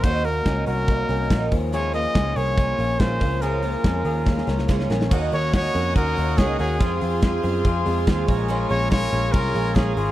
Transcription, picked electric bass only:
X:1
M:4/4
L:1/8
Q:1/4=142
K:Ebdor
V:1 name="Picked electric bass" clef=bass
E,,2 D,, C,,2 C,, B,,, E,,- | E,,2 D,, C,,2 B,,, B,,, D,,- | D,,2 F,, E,,2 D,, D,, B,,, | E,, E,,2 F,, E,, E,, D,, E,, |
F,, F,,2 G,, F,, F,, E,, B,,,- | B,,, B,,,2 B,,, C,, B,,, B,,, A,,, |]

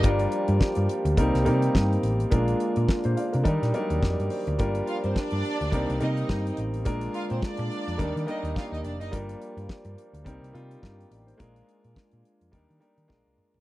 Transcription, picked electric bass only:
X:1
M:4/4
L:1/16
Q:"Swing 16ths" 1/4=106
K:Bbmix
V:1 name="Picked electric bass" clef=bass
G,,,2 z G,, z G,, z D,, C,, C,, C,2 G,,2 =A,,,2 | B,,,2 z B,, z B,, z C, E, B,, z E,, F,, G,, z D,, | G,,,2 z G,, z G,, z D,, C,, C,, C,2 G,,2 =A,,,2 | B,,,2 z B,, z B,, z F,, E,, E, z E,, z E,, F,,, _G,,, |
G,,,2 z G,, z G,, z D,, C,, C,, C,2 G,,2 =A,,,2 | B,,,2 z B,, z B,, z F,, E,, E, z E, B,,, C,, z B,,, |]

